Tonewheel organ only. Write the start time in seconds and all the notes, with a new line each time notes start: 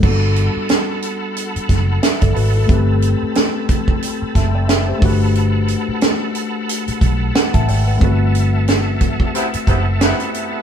0.03 A4 F#5 A5 B5
2.69 C4
5.02 F#5 B5
8.01 A4 E5 F#5 A5